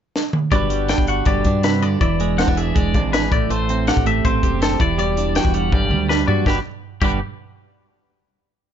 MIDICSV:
0, 0, Header, 1, 5, 480
1, 0, Start_track
1, 0, Key_signature, 1, "major"
1, 0, Tempo, 370599
1, 670, Time_signature, 4, 2, 24, 8
1, 11307, End_track
2, 0, Start_track
2, 0, Title_t, "Clean electric guitar"
2, 0, Program_c, 0, 27
2, 671, Note_on_c, 0, 74, 77
2, 1153, Note_off_c, 0, 74, 0
2, 1158, Note_on_c, 0, 79, 70
2, 1396, Note_off_c, 0, 79, 0
2, 1403, Note_on_c, 0, 78, 62
2, 1640, Note_off_c, 0, 78, 0
2, 1642, Note_on_c, 0, 74, 79
2, 2119, Note_off_c, 0, 74, 0
2, 2124, Note_on_c, 0, 71, 69
2, 2364, Note_off_c, 0, 71, 0
2, 2364, Note_on_c, 0, 74, 67
2, 2587, Note_off_c, 0, 74, 0
2, 2602, Note_on_c, 0, 74, 72
2, 3084, Note_off_c, 0, 74, 0
2, 3087, Note_on_c, 0, 78, 73
2, 3332, Note_off_c, 0, 78, 0
2, 3332, Note_on_c, 0, 76, 62
2, 3580, Note_off_c, 0, 76, 0
2, 3580, Note_on_c, 0, 74, 82
2, 4051, Note_off_c, 0, 74, 0
2, 4056, Note_on_c, 0, 71, 62
2, 4294, Note_off_c, 0, 71, 0
2, 4303, Note_on_c, 0, 74, 68
2, 4539, Note_off_c, 0, 74, 0
2, 4539, Note_on_c, 0, 72, 78
2, 5016, Note_off_c, 0, 72, 0
2, 5025, Note_on_c, 0, 78, 72
2, 5259, Note_off_c, 0, 78, 0
2, 5269, Note_on_c, 0, 76, 64
2, 5501, Note_off_c, 0, 76, 0
2, 5504, Note_on_c, 0, 72, 78
2, 5979, Note_off_c, 0, 72, 0
2, 5990, Note_on_c, 0, 69, 64
2, 6221, Note_off_c, 0, 69, 0
2, 6227, Note_on_c, 0, 74, 67
2, 6452, Note_off_c, 0, 74, 0
2, 6467, Note_on_c, 0, 74, 77
2, 6936, Note_off_c, 0, 74, 0
2, 6941, Note_on_c, 0, 79, 76
2, 7173, Note_off_c, 0, 79, 0
2, 7173, Note_on_c, 0, 78, 57
2, 7415, Note_off_c, 0, 78, 0
2, 7415, Note_on_c, 0, 74, 85
2, 7887, Note_off_c, 0, 74, 0
2, 7892, Note_on_c, 0, 71, 63
2, 8123, Note_off_c, 0, 71, 0
2, 8128, Note_on_c, 0, 74, 67
2, 8367, Note_off_c, 0, 74, 0
2, 8376, Note_on_c, 0, 67, 68
2, 8505, Note_off_c, 0, 67, 0
2, 9088, Note_on_c, 0, 67, 71
2, 9307, Note_off_c, 0, 67, 0
2, 11307, End_track
3, 0, Start_track
3, 0, Title_t, "Clean electric guitar"
3, 0, Program_c, 1, 27
3, 674, Note_on_c, 1, 43, 59
3, 681, Note_on_c, 1, 55, 56
3, 691, Note_on_c, 1, 62, 52
3, 702, Note_on_c, 1, 66, 56
3, 716, Note_on_c, 1, 71, 58
3, 886, Note_off_c, 1, 55, 0
3, 902, Note_on_c, 1, 55, 56
3, 1160, Note_off_c, 1, 62, 0
3, 1165, Note_on_c, 1, 62, 54
3, 1398, Note_off_c, 1, 66, 0
3, 1413, Note_on_c, 1, 66, 48
3, 1630, Note_off_c, 1, 55, 0
3, 1648, Note_on_c, 1, 55, 57
3, 1883, Note_off_c, 1, 62, 0
3, 1898, Note_on_c, 1, 62, 50
3, 2120, Note_off_c, 1, 43, 0
3, 2136, Note_on_c, 1, 48, 53
3, 2363, Note_on_c, 1, 50, 52
3, 2368, Note_off_c, 1, 48, 0
3, 2582, Note_off_c, 1, 66, 0
3, 2583, Note_off_c, 1, 62, 0
3, 2595, Note_off_c, 1, 71, 0
3, 2601, Note_off_c, 1, 50, 0
3, 2606, Note_on_c, 1, 52, 67
3, 2607, Note_off_c, 1, 55, 0
3, 2856, Note_on_c, 1, 56, 58
3, 3101, Note_on_c, 1, 60, 57
3, 3214, Note_off_c, 1, 60, 0
3, 3214, Note_on_c, 1, 62, 47
3, 3332, Note_on_c, 1, 68, 50
3, 3549, Note_off_c, 1, 56, 0
3, 3565, Note_on_c, 1, 56, 59
3, 3809, Note_off_c, 1, 62, 0
3, 3825, Note_on_c, 1, 62, 45
3, 4049, Note_off_c, 1, 68, 0
3, 4065, Note_on_c, 1, 68, 50
3, 4260, Note_off_c, 1, 56, 0
3, 4269, Note_off_c, 1, 62, 0
3, 4269, Note_off_c, 1, 68, 0
3, 4293, Note_on_c, 1, 45, 66
3, 4545, Note_on_c, 1, 57, 62
3, 4791, Note_on_c, 1, 60, 49
3, 5024, Note_on_c, 1, 67, 51
3, 5250, Note_off_c, 1, 57, 0
3, 5266, Note_on_c, 1, 57, 56
3, 5494, Note_off_c, 1, 60, 0
3, 5510, Note_on_c, 1, 60, 56
3, 5741, Note_off_c, 1, 67, 0
3, 5746, Note_on_c, 1, 67, 50
3, 5983, Note_on_c, 1, 72, 53
3, 6187, Note_off_c, 1, 45, 0
3, 6189, Note_off_c, 1, 72, 0
3, 6191, Note_off_c, 1, 57, 0
3, 6208, Note_off_c, 1, 52, 0
3, 6213, Note_on_c, 1, 52, 63
3, 6222, Note_off_c, 1, 60, 0
3, 6452, Note_on_c, 1, 55, 60
3, 6713, Note_on_c, 1, 62, 54
3, 6940, Note_off_c, 1, 67, 0
3, 6946, Note_on_c, 1, 66, 53
3, 7163, Note_off_c, 1, 55, 0
3, 7178, Note_on_c, 1, 55, 55
3, 7382, Note_off_c, 1, 52, 0
3, 7389, Note_off_c, 1, 66, 0
3, 7392, Note_off_c, 1, 62, 0
3, 7413, Note_on_c, 1, 43, 67
3, 7640, Note_off_c, 1, 55, 0
3, 7655, Note_on_c, 1, 55, 56
3, 7904, Note_on_c, 1, 62, 51
3, 8148, Note_on_c, 1, 66, 51
3, 8345, Note_off_c, 1, 62, 0
3, 8348, Note_off_c, 1, 66, 0
3, 8355, Note_off_c, 1, 43, 0
3, 8370, Note_on_c, 1, 43, 54
3, 8374, Note_off_c, 1, 55, 0
3, 8387, Note_on_c, 1, 55, 55
3, 8396, Note_on_c, 1, 62, 51
3, 8406, Note_on_c, 1, 66, 52
3, 8417, Note_on_c, 1, 71, 52
3, 8512, Note_off_c, 1, 43, 0
3, 8521, Note_off_c, 1, 55, 0
3, 8523, Note_off_c, 1, 62, 0
3, 8530, Note_off_c, 1, 66, 0
3, 8535, Note_off_c, 1, 71, 0
3, 9092, Note_on_c, 1, 43, 57
3, 9106, Note_on_c, 1, 55, 57
3, 9117, Note_on_c, 1, 62, 54
3, 9123, Note_on_c, 1, 66, 50
3, 9134, Note_on_c, 1, 71, 51
3, 9302, Note_off_c, 1, 43, 0
3, 9308, Note_off_c, 1, 55, 0
3, 9314, Note_off_c, 1, 62, 0
3, 9317, Note_off_c, 1, 66, 0
3, 9323, Note_off_c, 1, 71, 0
3, 11307, End_track
4, 0, Start_track
4, 0, Title_t, "Fingered electric bass"
4, 0, Program_c, 2, 33
4, 674, Note_on_c, 2, 31, 89
4, 1212, Note_off_c, 2, 31, 0
4, 1273, Note_on_c, 2, 31, 70
4, 1598, Note_off_c, 2, 31, 0
4, 1629, Note_on_c, 2, 31, 73
4, 1848, Note_off_c, 2, 31, 0
4, 1884, Note_on_c, 2, 43, 88
4, 2529, Note_off_c, 2, 43, 0
4, 2603, Note_on_c, 2, 28, 81
4, 3142, Note_off_c, 2, 28, 0
4, 3207, Note_on_c, 2, 28, 80
4, 3530, Note_off_c, 2, 28, 0
4, 3575, Note_on_c, 2, 28, 76
4, 3812, Note_off_c, 2, 28, 0
4, 3812, Note_on_c, 2, 32, 73
4, 4242, Note_off_c, 2, 32, 0
4, 4299, Note_on_c, 2, 33, 73
4, 4510, Note_off_c, 2, 33, 0
4, 4531, Note_on_c, 2, 33, 92
4, 5070, Note_off_c, 2, 33, 0
4, 5138, Note_on_c, 2, 33, 72
4, 5459, Note_off_c, 2, 33, 0
4, 5500, Note_on_c, 2, 33, 74
4, 5712, Note_off_c, 2, 33, 0
4, 5741, Note_on_c, 2, 30, 88
4, 6167, Note_off_c, 2, 30, 0
4, 6221, Note_on_c, 2, 28, 80
4, 6969, Note_off_c, 2, 28, 0
4, 7058, Note_on_c, 2, 28, 82
4, 7413, Note_off_c, 2, 28, 0
4, 7413, Note_on_c, 2, 31, 81
4, 7643, Note_on_c, 2, 38, 68
4, 7663, Note_off_c, 2, 31, 0
4, 8074, Note_off_c, 2, 38, 0
4, 8132, Note_on_c, 2, 43, 70
4, 8344, Note_off_c, 2, 43, 0
4, 8368, Note_on_c, 2, 31, 81
4, 8501, Note_off_c, 2, 31, 0
4, 9086, Note_on_c, 2, 31, 78
4, 9306, Note_off_c, 2, 31, 0
4, 11307, End_track
5, 0, Start_track
5, 0, Title_t, "Drums"
5, 203, Note_on_c, 9, 38, 66
5, 332, Note_off_c, 9, 38, 0
5, 430, Note_on_c, 9, 47, 73
5, 560, Note_off_c, 9, 47, 0
5, 669, Note_on_c, 9, 36, 96
5, 673, Note_on_c, 9, 42, 63
5, 798, Note_off_c, 9, 36, 0
5, 802, Note_off_c, 9, 42, 0
5, 909, Note_on_c, 9, 42, 56
5, 1039, Note_off_c, 9, 42, 0
5, 1147, Note_on_c, 9, 42, 67
5, 1158, Note_on_c, 9, 38, 81
5, 1270, Note_on_c, 9, 36, 78
5, 1276, Note_off_c, 9, 42, 0
5, 1288, Note_off_c, 9, 38, 0
5, 1391, Note_on_c, 9, 42, 56
5, 1400, Note_off_c, 9, 36, 0
5, 1521, Note_off_c, 9, 42, 0
5, 1625, Note_on_c, 9, 42, 67
5, 1634, Note_on_c, 9, 36, 96
5, 1755, Note_off_c, 9, 42, 0
5, 1764, Note_off_c, 9, 36, 0
5, 1872, Note_on_c, 9, 42, 58
5, 1877, Note_on_c, 9, 36, 64
5, 2002, Note_off_c, 9, 42, 0
5, 2007, Note_off_c, 9, 36, 0
5, 2116, Note_on_c, 9, 42, 83
5, 2128, Note_on_c, 9, 38, 100
5, 2246, Note_off_c, 9, 42, 0
5, 2257, Note_off_c, 9, 38, 0
5, 2364, Note_on_c, 9, 42, 52
5, 2493, Note_off_c, 9, 42, 0
5, 2603, Note_on_c, 9, 36, 90
5, 2603, Note_on_c, 9, 42, 73
5, 2732, Note_off_c, 9, 36, 0
5, 2732, Note_off_c, 9, 42, 0
5, 2847, Note_on_c, 9, 42, 54
5, 2977, Note_off_c, 9, 42, 0
5, 3089, Note_on_c, 9, 42, 71
5, 3100, Note_on_c, 9, 38, 86
5, 3209, Note_on_c, 9, 36, 77
5, 3218, Note_off_c, 9, 42, 0
5, 3230, Note_off_c, 9, 38, 0
5, 3333, Note_on_c, 9, 42, 56
5, 3338, Note_off_c, 9, 36, 0
5, 3463, Note_off_c, 9, 42, 0
5, 3572, Note_on_c, 9, 36, 93
5, 3576, Note_on_c, 9, 42, 64
5, 3701, Note_off_c, 9, 36, 0
5, 3705, Note_off_c, 9, 42, 0
5, 3813, Note_on_c, 9, 36, 66
5, 3814, Note_on_c, 9, 42, 48
5, 3943, Note_off_c, 9, 36, 0
5, 3944, Note_off_c, 9, 42, 0
5, 4060, Note_on_c, 9, 42, 78
5, 4071, Note_on_c, 9, 38, 103
5, 4189, Note_off_c, 9, 42, 0
5, 4201, Note_off_c, 9, 38, 0
5, 4296, Note_on_c, 9, 36, 86
5, 4301, Note_on_c, 9, 42, 48
5, 4426, Note_off_c, 9, 36, 0
5, 4431, Note_off_c, 9, 42, 0
5, 4539, Note_on_c, 9, 42, 66
5, 4668, Note_off_c, 9, 42, 0
5, 4781, Note_on_c, 9, 42, 52
5, 4910, Note_off_c, 9, 42, 0
5, 5017, Note_on_c, 9, 42, 66
5, 5029, Note_on_c, 9, 38, 82
5, 5141, Note_on_c, 9, 36, 81
5, 5147, Note_off_c, 9, 42, 0
5, 5158, Note_off_c, 9, 38, 0
5, 5262, Note_on_c, 9, 42, 62
5, 5270, Note_off_c, 9, 36, 0
5, 5392, Note_off_c, 9, 42, 0
5, 5502, Note_on_c, 9, 36, 91
5, 5503, Note_on_c, 9, 42, 70
5, 5631, Note_off_c, 9, 36, 0
5, 5633, Note_off_c, 9, 42, 0
5, 5740, Note_on_c, 9, 36, 68
5, 5746, Note_on_c, 9, 42, 54
5, 5870, Note_off_c, 9, 36, 0
5, 5876, Note_off_c, 9, 42, 0
5, 5982, Note_on_c, 9, 42, 82
5, 5993, Note_on_c, 9, 38, 106
5, 6111, Note_off_c, 9, 42, 0
5, 6123, Note_off_c, 9, 38, 0
5, 6216, Note_on_c, 9, 36, 84
5, 6218, Note_on_c, 9, 42, 53
5, 6346, Note_off_c, 9, 36, 0
5, 6348, Note_off_c, 9, 42, 0
5, 6461, Note_on_c, 9, 42, 73
5, 6590, Note_off_c, 9, 42, 0
5, 6699, Note_on_c, 9, 42, 54
5, 6829, Note_off_c, 9, 42, 0
5, 6933, Note_on_c, 9, 42, 62
5, 6945, Note_on_c, 9, 38, 85
5, 7055, Note_on_c, 9, 36, 79
5, 7063, Note_off_c, 9, 42, 0
5, 7074, Note_off_c, 9, 38, 0
5, 7173, Note_on_c, 9, 42, 57
5, 7185, Note_off_c, 9, 36, 0
5, 7303, Note_off_c, 9, 42, 0
5, 7415, Note_on_c, 9, 36, 92
5, 7416, Note_on_c, 9, 48, 47
5, 7544, Note_off_c, 9, 36, 0
5, 7546, Note_off_c, 9, 48, 0
5, 7653, Note_on_c, 9, 47, 50
5, 7783, Note_off_c, 9, 47, 0
5, 7905, Note_on_c, 9, 38, 78
5, 8034, Note_off_c, 9, 38, 0
5, 8135, Note_on_c, 9, 43, 63
5, 8265, Note_off_c, 9, 43, 0
5, 8369, Note_on_c, 9, 36, 83
5, 8382, Note_on_c, 9, 38, 68
5, 8499, Note_off_c, 9, 36, 0
5, 8511, Note_off_c, 9, 38, 0
5, 9086, Note_on_c, 9, 49, 85
5, 9087, Note_on_c, 9, 36, 104
5, 9216, Note_off_c, 9, 49, 0
5, 9217, Note_off_c, 9, 36, 0
5, 11307, End_track
0, 0, End_of_file